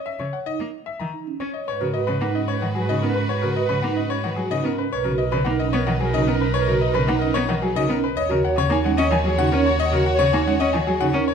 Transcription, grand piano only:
\new Staff \with { instrumentName = "Grand piano" } { \time 3/4 \key fis \mixolydian \tempo 4 = 111 e''16 cis''16 fis''16 dis''16 r8 e''16 ais''16 r8 cis''16 dis''16 | \key gis \minor cis''16 ais'16 dis''16 b'16 fis''16 dis''16 cis''16 fis''16 gis'16 dis''16 ais'16 b'16 | cis''16 ais'16 dis''16 b'16 fis''16 dis''16 cis''16 fis''16 gis'16 dis''16 ais'16 b'16 | cis''16 ais'16 dis''16 b'16 fis''16 dis''16 cis''16 fis''16 gis'16 dis''16 ais'16 b'16 |
cis''16 ais'16 dis''16 b'16 fis''16 dis''16 cis''16 fis''16 gis'16 dis''16 ais'16 b'16 | dis''16 ais'16 fis''16 cis''16 gis''16 fis''16 dis''16 gis''16 gis'16 fis''16 ais'16 cis''16 | dis''16 ais'16 fis''16 cis''16 gis''16 fis''16 dis''16 gis''16 gis'16 fis''16 ais'16 cis''16 | }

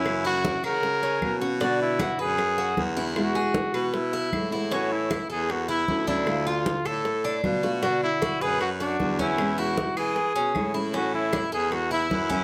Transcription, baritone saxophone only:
\new Staff \with { instrumentName = "Baritone saxophone" } { \clef bass \time 4/4 \key a \major \tempo 4 = 154 fis,4. cis4. b,4~ | b,4. fis,4. e,4~ | e,8. r8. b,4. a,4~ | a,4. e,4. d,4~ |
d,4. a,4. b,4~ | b,8. r8. fis,4. e,4~ | e,4. e4 b,8 a,4~ | a,4. e,4. fis,4 | }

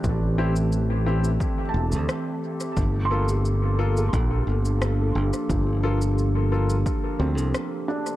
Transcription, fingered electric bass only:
\new Staff \with { instrumentName = "Fingered electric bass" } { \clef bass \time 4/4 \key g \dorian \tempo 4 = 88 a,,2 r8 e,,16 d,16 r4 | g,,2 bes,,8 g,,4 g,,16 r16 | g,,2 r8 d,16 c,16 r4 | }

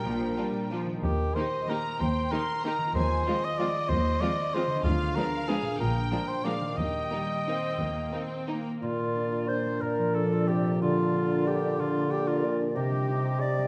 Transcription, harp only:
\new Staff \with { instrumentName = "Harp" } { \time 3/4 \key ees \major \tempo 4 = 184 << { r2. | r2. | r2. | r2. |
r2. | r2. | r2. | r2. |
r2. | \key bes \major bes,8 bes8 d'8 f'8 d'8 bes8 | bes,8 f8 d'8 f'8 d'8 bes8 | d8 d'8 f'8 bes'8 f'8 d'8 |
d8 bes8 f'8 bes'8 f'8 d'8 | c8 g8 ees'8 c''8 ees'8 g8 | } \\ { <bes, bes d' bes'>2. | <ees bes ees' bes'>2.~ | <ees bes ees' bes'>2. | <ees c' f' aes'>2.~ |
<ees c' f' aes'>2. | <d b d' aes'>2. | <bes, bes d' aes'>2. | <ees bes ees' g'>2.~ |
<ees bes ees' g'>2.~ | <ees bes ees' g'>2.~ | <ees bes ees' g'>2. | r2. |
r2. | r2. | } >> }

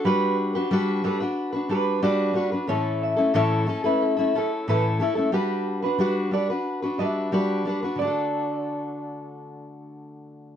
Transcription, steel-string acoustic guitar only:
\new Staff \with { instrumentName = "Steel-string acoustic guitar" } { \time 4/4 \key d \major \tempo 4 = 91 <g d' fis' b'>8. <d' fis' b'>16 <g d' fis' b'>8 <g d' fis' b'>16 <d' fis' b'>8 <d' fis' b'>16 <g d' fis' b'>8 <g d' fis' b'>8 <g d' fis' b'>16 <d' fis' b'>16 | <a, e a cis' e' a'>8. <a cis' e' a'>16 <a, e a cis' e' a'>8 <a cis' e' a'>16 <a cis' e' a'>8 <a cis' e' a'>16 <a cis' e' a'>8 <a, e a cis' e' a'>8 <a cis' e' a'>16 <a cis' e' a'>16 | <g d' fis' b'>8. <d' fis' b'>16 <g d' fis' b'>8 <g d' fis' b'>16 <d' fis' b'>8 <d' fis' b'>16 <g d' fis' b'>8 <g d' fis' b'>8 <g d' fis' b'>16 <d' fis' b'>16 | <d a d' fis' a'>1 | }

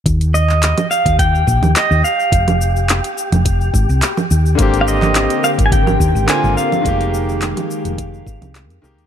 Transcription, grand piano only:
\new Staff \with { instrumentName = "Grand piano" } { \time 4/4 \key f \dorian \tempo 4 = 106 r1 | r1 | <d bes c' g'>2. <d bes c' f'>4 | <ees aes bes g'>2. r8 <ees aes bes g'>8 | }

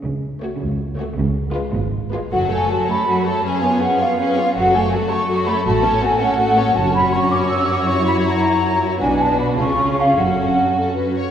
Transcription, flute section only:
\new Staff \with { instrumentName = "Flute section" } { \time 6/8 \key fis \minor \tempo 4. = 107 r2. | r2. | fis''8 gis''8 a''8 b''4 a''8 | gis''4 fis''8 eis''4. |
fis''8 gis''8 a''8 cis'''4 b''8 | a''4 gis''8 fis''4. | a''8 b''8 cis'''8 d'''8 e'''8 d'''8 | cis'''8 b''8 ais''2 |
gis''8 a''8 b''8 cis'''4 eis''8 | fis''4. r4. | }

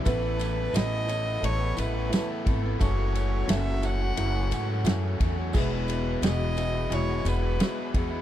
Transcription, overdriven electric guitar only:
\new Staff \with { instrumentName = "Overdriven electric guitar" } { \time 4/4 \key e \major \tempo 4 = 88 <a, e a b e'>16 <a b e'>16 <e a b e'>8 <a, e a b e'>8 <e a b e'>16 <a b e'>8 <a b e'>16 <e a b e'>16 <a b e'>16 <a, e a b e'>8 <e a b e'>16 <a b e'>16 | <fis, cis fis a cis' fis'>16 <fis a cis' fis'>16 <fis a cis' fis'>8 <fis, cis fis a cis' fis'>8 <fis a cis' fis'>16 <fis a cis' fis'>8 <fis a cis' fis'>16 <fis a cis' fis'>16 <fis a cis' fis'>16 <fis, cis fis a cis' fis'>8 <fis a cis' fis'>16 <fis a cis' fis'>16 | <e, b, e gis b e'>16 <e gis b e'>16 <e gis b e'>8 <e, b, e gis b e'>8 <e gis b e'>16 <e gis b e'>8 <e gis b e'>16 <e gis b e'>16 <e gis b e'>16 <e, b, e gis b e'>8 <e gis b e'>16 <e gis b e'>16 | }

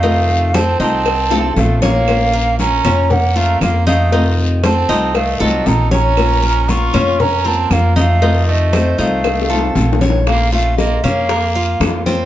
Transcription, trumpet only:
\new Staff \with { instrumentName = "Trumpet" } { \time 4/4 \key bes \minor \tempo 4 = 117 a4 c'8 c'4. a8 bes8~ | bes4 des'4 bes8 a8 bes8 a8~ | a8 r8 c'4 a8 ges8 ees'8 des'8~ | des'4 f'4 des'8 c'8 bes8 a8~ |
a8 a4 a2 r8 | bes8 a8 bes8 bes2 r8 | }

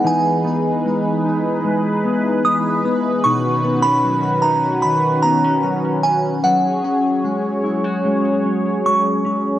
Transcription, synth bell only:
\new Staff \with { instrumentName = "Synth bell" } { \time 4/4 \key e \major \tempo 4 = 75 gis''2 r4 dis'''4 | cis'''8. b''8. ais''8 b''8 ais''4 gis''8 | fis''4 r2 cis'''4 | }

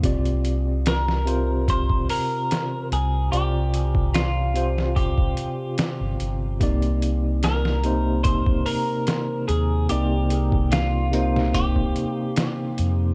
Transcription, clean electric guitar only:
\new Staff \with { instrumentName = "Clean electric guitar" } { \time 4/4 \key c \minor \tempo 4 = 73 r4 bes'4 c''8 bes'4 aes'8 | g'4 f'4 g'4 r4 | r4 bes'4 c''8 bes'4 aes'8 | g'4 f'4 g'4 r4 | }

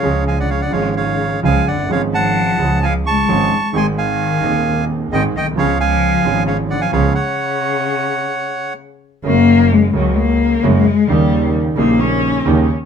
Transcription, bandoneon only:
\new Staff \with { instrumentName = "Bandoneon" } { \time 4/4 \key cis \phrygian \tempo 4 = 131 <cis'' eis''>8 <eis'' gis''>16 <d'' fis''>16 <cis'' eis''>16 <d'' fis''>16 <cis'' eis''>8 <cis'' eis''>4 <eis'' gis''>8 <d'' fis''>8 | <cis'' eis''>8 <fis'' a''>4. <eis'' gis''>8 <a'' cis'''>4. | <gis'' bis''>8 <eis'' gis''>2 r8 <dis'' g''>8 <dis'' g''>8 | <cis'' eis''>8 <eis'' gis''>4. <cis'' eis''>8 <d'' fis''>16 <eis'' gis''>16 <cis'' eis''>8 <cis'' fis''>8~ |
<cis'' fis''>2. r4 | \key fis \major r1 | r1 | }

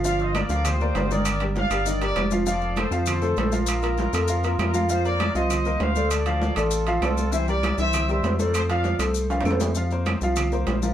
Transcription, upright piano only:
\new Staff \with { instrumentName = "Upright piano" } { \time 4/4 \key f \mixolydian \tempo 4 = 197 <f f' f''>4 <bes bes' d''>8 <f f' f''>4 <bes bes' d''>8 <bes bes' d''>8 <ees ees' d''>8~ | <ees ees' d''>8 <g g' bes'>4 <g g' bes'>8 <ees ees' ees''>8 <g g' bes'>4 <f f' f''>8 | <f f' f''>4 <a a' c''>8 <f f' f''>4 <a a' c''>8 <a a' c''>8 <f f' f''>8~ | <f f' f''>8 <bes f' bes'>4 <a a' bes'>8 <f f' f''>8 <bes f' bes'>4 <f f' f''>8 |
<f f' f''>8 <bes bes' c''>4 <f f' f''>4 <bes bes' c''>4 <a a' d''>8~ | <a a' d''>8 <f f' f''>4 <a a' d''>4 <f f' f''>8 <a a' d''>4 | <e e' e''>8 <g g' bes'>4 <e e' e''>4 <g g' bes'>4 <a a' c''>8~ | <a a' c''>8 <f f' f''>4 <a a' c''>4 <f f' f''>8 <a a' c''>4 |
<f f' f''>8 <bes bes' c''>4 <f f' f''>4 <bes bes' c''>4 <f f' bes'>8 | }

